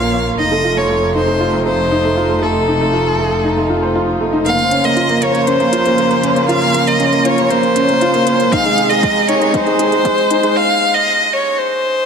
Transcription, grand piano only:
Already playing: C#4 F4
0.00 A#3
0.14 A#3
0.39 D#4
0.52 A3
0.64 F4
0.77 A3
0.89 A3
1.15 D#4
1.28 A3
1.40 F4
1.53 A3
1.66 A3
1.92 D#4
2.04 A3
2.17 F4
2.30 A3
2.42 A3
2.68 D#4
2.81 A3
2.93 F4
3.06 A3
3.19 A3
3.44 D#4
3.57 A3
3.70 F4
3.82 C5
3.95 F4
4.21 A3
4.33 D#4
4.46 A#3
4.71 C#4
4.84 A#3
4.96 F4
5.09 A#3
5.22 A#3
5.47 C#4
5.60 A#3
5.72 F4
5.85 A#3
5.98 A#3
6.23 C#4
6.36 A#3
6.48 F4
6.61 A#3
6.74 A#3
7.00 C#4
7.13 A#3
7.25 F4
7.38 A#3
7.50 A#3
7.76 C#4
7.89 A#3
8.02 F4
8.14 A#3
8.27 A#3
8.52 D#4
8.65 G#3
8.78 G#4
8.90 G#3
9.03 G#3
9.29 D#4
9.41 G#3
9.54 D#4
9.66 G#3
9.79 G#4
9.92 G#3
10.05 G#3
10.31 D#4
10.43 G#3

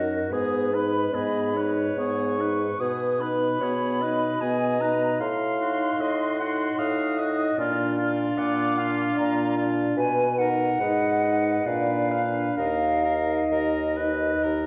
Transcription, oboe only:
Already playing: F#4
0.32 G#4
0.74 B4
1.15 G#4
1.57 B4
1.99 G#4
2.40 B4
2.81 G#4
3.22 B4
3.63 G#4
4.02 B4
4.41 G#4
4.82 B4
5.61 F#4
6.40 F#4
7.21 F#4
7.60 F4
7.98 F4
8.79 F4
9.57 F4
10.39 A#4
10.81 B4
11.24 B4
11.66 B4
12.10 B4
12.56 A#4
13.04 A#4
13.51 A#4
13.97 B4
14.43 A#4

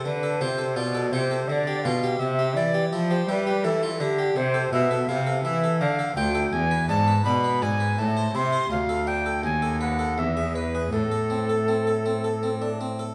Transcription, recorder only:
0.05 B4
0.42 C5
0.76 D5
1.12 C5
1.48 D5 E5
1.84 F5
2.19 E5
2.55 D5
3.11 C5
3.28 B4 C5
3.64 A4
4.01 G4
4.37 C5
4.73 E5
5.08 F5
5.44 E5
5.80 F5
6.16 G5
6.53 G#5
6.89 A5
7.25 B5
7.62 G#5
7.99 A5
8.36 C6
8.71 F5
9.08 G5
9.45 G#5
9.81 F#5
10.19 E5
10.55 B4
10.93 A4

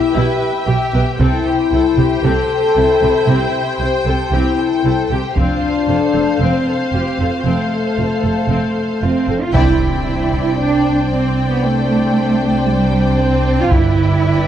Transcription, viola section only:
Already playing: E5
0.15 E4
0.67 G4
0.94 B4
1.20 C4 C5
1.73 E4
1.97 G4
2.25 C4
2.76 E4
3.03 G4
3.29 C4
3.80 E4
4.06 G4
4.34 C4
4.86 E4
5.12 G4
5.35 C4 C5
5.88 F4
6.14 A4
6.41 C4
6.93 F4
7.20 A4
7.45 C4
7.97 F4
8.23 A4
8.49 C4
9.02 F4
9.28 A4
9.53 C5
13.73 B4

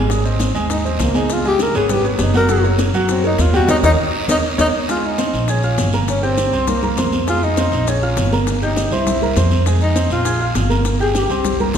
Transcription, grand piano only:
0.10 G#3 G#4 G#5
0.25 C4 C5 D#5
0.55 G#3 G#4 G#5
0.85 C4 C5 D#5
1.15 G#3 G#4 G#5
1.45 G#3 G#4 G#5
1.75 B3 B4 C#5
1.89 B3 B4 C#5
2.04 B3 B4 C#5
2.35 F#3 F#4 F#5
2.50 F#3 F#4 F#5
2.64 A#3 A#4 C#5
2.94 F#3 F#4 F#5
3.24 A#3 A#4 C#5
3.53 G3 G4 G5
3.69 A#4 C#5 D#5
3.84 A#4 C#5 D#5
4.29 A#4 C#5 D#5
4.58 A#4 C#5 D#5
4.88 G#3 G#4 G#5
5.18 C4 C5 C6
5.48 G#4 G#5 G#6
5.63 F4 F5 F6
5.94 A#3 A#4 A#5
6.23 G4 G5 G6
6.53 C4 C5 C6
6.83 A#3 A#4 A#5
6.97 C4 C5 C6
7.27 G#3 G#4 G#5
7.57 C4 C5 C6
7.87 G#4 G#5 G#6
8.03 F4 F5 F6
8.33 A#3 A#4 A#5
8.62 G4 G5 G6
8.92 C4 C5 C6
9.22 A#3 A#4 A#5
9.37 C4 C5 C6
9.66 G#3 G#4 G#5
9.96 C4 C5 C6
10.25 G#4 G#5 G#6
10.40 F4 F5 F6
10.70 A#3 A#4 A#5
11.00 G4 G5 G6
11.30 C4 C5 C6
11.60 A#3 A#4 A#5
11.75 C4

